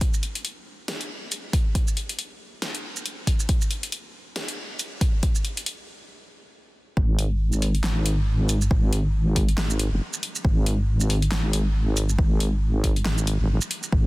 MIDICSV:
0, 0, Header, 1, 3, 480
1, 0, Start_track
1, 0, Tempo, 434783
1, 13, Time_signature, 4, 2, 24, 8
1, 15530, End_track
2, 0, Start_track
2, 0, Title_t, "Wobble bass"
2, 0, Program_c, 0, 39
2, 7694, Note_on_c, 0, 32, 96
2, 9601, Note_off_c, 0, 32, 0
2, 9614, Note_on_c, 0, 32, 99
2, 10934, Note_off_c, 0, 32, 0
2, 10952, Note_on_c, 0, 30, 85
2, 11045, Note_off_c, 0, 30, 0
2, 11533, Note_on_c, 0, 32, 99
2, 13440, Note_off_c, 0, 32, 0
2, 13453, Note_on_c, 0, 32, 100
2, 14774, Note_off_c, 0, 32, 0
2, 14791, Note_on_c, 0, 32, 83
2, 15009, Note_off_c, 0, 32, 0
2, 15373, Note_on_c, 0, 32, 100
2, 15530, Note_off_c, 0, 32, 0
2, 15530, End_track
3, 0, Start_track
3, 0, Title_t, "Drums"
3, 13, Note_on_c, 9, 36, 116
3, 13, Note_on_c, 9, 42, 75
3, 123, Note_off_c, 9, 36, 0
3, 124, Note_off_c, 9, 42, 0
3, 152, Note_on_c, 9, 82, 62
3, 253, Note_on_c, 9, 42, 50
3, 262, Note_off_c, 9, 82, 0
3, 363, Note_off_c, 9, 42, 0
3, 391, Note_on_c, 9, 42, 52
3, 493, Note_off_c, 9, 42, 0
3, 493, Note_on_c, 9, 42, 76
3, 603, Note_off_c, 9, 42, 0
3, 974, Note_on_c, 9, 38, 120
3, 974, Note_on_c, 9, 42, 77
3, 1084, Note_off_c, 9, 38, 0
3, 1084, Note_off_c, 9, 42, 0
3, 1112, Note_on_c, 9, 42, 52
3, 1222, Note_off_c, 9, 42, 0
3, 1454, Note_on_c, 9, 42, 77
3, 1454, Note_on_c, 9, 82, 55
3, 1564, Note_off_c, 9, 42, 0
3, 1564, Note_off_c, 9, 82, 0
3, 1693, Note_on_c, 9, 36, 107
3, 1693, Note_on_c, 9, 46, 96
3, 1803, Note_off_c, 9, 36, 0
3, 1804, Note_off_c, 9, 46, 0
3, 1933, Note_on_c, 9, 36, 110
3, 1933, Note_on_c, 9, 42, 80
3, 2043, Note_off_c, 9, 36, 0
3, 2043, Note_off_c, 9, 42, 0
3, 2072, Note_on_c, 9, 82, 63
3, 2173, Note_on_c, 9, 42, 54
3, 2183, Note_off_c, 9, 82, 0
3, 2284, Note_off_c, 9, 42, 0
3, 2312, Note_on_c, 9, 42, 53
3, 2413, Note_off_c, 9, 42, 0
3, 2413, Note_on_c, 9, 42, 77
3, 2524, Note_off_c, 9, 42, 0
3, 2893, Note_on_c, 9, 38, 118
3, 2893, Note_on_c, 9, 42, 80
3, 3004, Note_off_c, 9, 38, 0
3, 3004, Note_off_c, 9, 42, 0
3, 3031, Note_on_c, 9, 42, 53
3, 3142, Note_off_c, 9, 42, 0
3, 3273, Note_on_c, 9, 82, 51
3, 3374, Note_on_c, 9, 42, 79
3, 3383, Note_off_c, 9, 82, 0
3, 3484, Note_off_c, 9, 42, 0
3, 3612, Note_on_c, 9, 36, 61
3, 3613, Note_on_c, 9, 46, 98
3, 3723, Note_off_c, 9, 36, 0
3, 3723, Note_off_c, 9, 46, 0
3, 3751, Note_on_c, 9, 82, 53
3, 3852, Note_on_c, 9, 36, 114
3, 3852, Note_on_c, 9, 42, 82
3, 3861, Note_off_c, 9, 82, 0
3, 3962, Note_off_c, 9, 42, 0
3, 3963, Note_off_c, 9, 36, 0
3, 3991, Note_on_c, 9, 82, 61
3, 4092, Note_on_c, 9, 42, 55
3, 4101, Note_off_c, 9, 82, 0
3, 4202, Note_off_c, 9, 42, 0
3, 4230, Note_on_c, 9, 42, 56
3, 4331, Note_off_c, 9, 42, 0
3, 4331, Note_on_c, 9, 42, 82
3, 4441, Note_off_c, 9, 42, 0
3, 4812, Note_on_c, 9, 38, 115
3, 4812, Note_on_c, 9, 42, 86
3, 4922, Note_off_c, 9, 38, 0
3, 4922, Note_off_c, 9, 42, 0
3, 4950, Note_on_c, 9, 42, 57
3, 5061, Note_off_c, 9, 42, 0
3, 5293, Note_on_c, 9, 42, 81
3, 5293, Note_on_c, 9, 82, 52
3, 5403, Note_off_c, 9, 42, 0
3, 5403, Note_off_c, 9, 82, 0
3, 5533, Note_on_c, 9, 36, 107
3, 5533, Note_on_c, 9, 46, 99
3, 5643, Note_off_c, 9, 36, 0
3, 5644, Note_off_c, 9, 46, 0
3, 5772, Note_on_c, 9, 42, 86
3, 5773, Note_on_c, 9, 36, 113
3, 5883, Note_off_c, 9, 42, 0
3, 5884, Note_off_c, 9, 36, 0
3, 5910, Note_on_c, 9, 82, 60
3, 6012, Note_on_c, 9, 42, 55
3, 6021, Note_off_c, 9, 82, 0
3, 6123, Note_off_c, 9, 42, 0
3, 6152, Note_on_c, 9, 42, 57
3, 6252, Note_off_c, 9, 42, 0
3, 6252, Note_on_c, 9, 42, 84
3, 6363, Note_off_c, 9, 42, 0
3, 7694, Note_on_c, 9, 36, 119
3, 7805, Note_off_c, 9, 36, 0
3, 7934, Note_on_c, 9, 42, 83
3, 8044, Note_off_c, 9, 42, 0
3, 8312, Note_on_c, 9, 82, 60
3, 8414, Note_on_c, 9, 46, 96
3, 8423, Note_off_c, 9, 82, 0
3, 8524, Note_off_c, 9, 46, 0
3, 8552, Note_on_c, 9, 42, 39
3, 8654, Note_on_c, 9, 38, 121
3, 8654, Note_on_c, 9, 39, 96
3, 8663, Note_off_c, 9, 42, 0
3, 8764, Note_off_c, 9, 38, 0
3, 8764, Note_off_c, 9, 39, 0
3, 8894, Note_on_c, 9, 42, 83
3, 9004, Note_off_c, 9, 42, 0
3, 9374, Note_on_c, 9, 42, 84
3, 9374, Note_on_c, 9, 82, 60
3, 9485, Note_off_c, 9, 42, 0
3, 9485, Note_off_c, 9, 82, 0
3, 9512, Note_on_c, 9, 82, 53
3, 9614, Note_on_c, 9, 36, 122
3, 9623, Note_off_c, 9, 82, 0
3, 9724, Note_off_c, 9, 36, 0
3, 9854, Note_on_c, 9, 42, 84
3, 9964, Note_off_c, 9, 42, 0
3, 10333, Note_on_c, 9, 36, 65
3, 10334, Note_on_c, 9, 46, 92
3, 10444, Note_off_c, 9, 36, 0
3, 10444, Note_off_c, 9, 46, 0
3, 10472, Note_on_c, 9, 42, 39
3, 10574, Note_on_c, 9, 38, 127
3, 10574, Note_on_c, 9, 39, 99
3, 10582, Note_off_c, 9, 42, 0
3, 10684, Note_off_c, 9, 38, 0
3, 10684, Note_off_c, 9, 39, 0
3, 10711, Note_on_c, 9, 82, 62
3, 10813, Note_on_c, 9, 42, 79
3, 10822, Note_off_c, 9, 82, 0
3, 10923, Note_off_c, 9, 42, 0
3, 11191, Note_on_c, 9, 82, 78
3, 11294, Note_on_c, 9, 42, 84
3, 11301, Note_off_c, 9, 82, 0
3, 11404, Note_off_c, 9, 42, 0
3, 11432, Note_on_c, 9, 82, 55
3, 11533, Note_on_c, 9, 36, 127
3, 11543, Note_off_c, 9, 82, 0
3, 11643, Note_off_c, 9, 36, 0
3, 11773, Note_on_c, 9, 42, 79
3, 11884, Note_off_c, 9, 42, 0
3, 12151, Note_on_c, 9, 82, 63
3, 12253, Note_on_c, 9, 46, 94
3, 12261, Note_off_c, 9, 82, 0
3, 12364, Note_off_c, 9, 46, 0
3, 12392, Note_on_c, 9, 42, 36
3, 12493, Note_on_c, 9, 38, 127
3, 12493, Note_on_c, 9, 39, 93
3, 12502, Note_off_c, 9, 42, 0
3, 12603, Note_off_c, 9, 38, 0
3, 12603, Note_off_c, 9, 39, 0
3, 12733, Note_on_c, 9, 42, 80
3, 12843, Note_off_c, 9, 42, 0
3, 13213, Note_on_c, 9, 42, 79
3, 13213, Note_on_c, 9, 82, 64
3, 13324, Note_off_c, 9, 42, 0
3, 13324, Note_off_c, 9, 82, 0
3, 13351, Note_on_c, 9, 82, 55
3, 13453, Note_on_c, 9, 36, 126
3, 13462, Note_off_c, 9, 82, 0
3, 13563, Note_off_c, 9, 36, 0
3, 13694, Note_on_c, 9, 42, 75
3, 13804, Note_off_c, 9, 42, 0
3, 14173, Note_on_c, 9, 36, 63
3, 14174, Note_on_c, 9, 46, 94
3, 14284, Note_off_c, 9, 36, 0
3, 14284, Note_off_c, 9, 46, 0
3, 14312, Note_on_c, 9, 42, 37
3, 14413, Note_on_c, 9, 38, 125
3, 14413, Note_on_c, 9, 39, 90
3, 14422, Note_off_c, 9, 42, 0
3, 14523, Note_off_c, 9, 38, 0
3, 14523, Note_off_c, 9, 39, 0
3, 14552, Note_on_c, 9, 82, 68
3, 14653, Note_on_c, 9, 42, 75
3, 14662, Note_off_c, 9, 82, 0
3, 14763, Note_off_c, 9, 42, 0
3, 15031, Note_on_c, 9, 82, 84
3, 15133, Note_on_c, 9, 42, 76
3, 15141, Note_off_c, 9, 82, 0
3, 15243, Note_off_c, 9, 42, 0
3, 15271, Note_on_c, 9, 82, 57
3, 15373, Note_on_c, 9, 36, 119
3, 15381, Note_off_c, 9, 82, 0
3, 15483, Note_off_c, 9, 36, 0
3, 15530, End_track
0, 0, End_of_file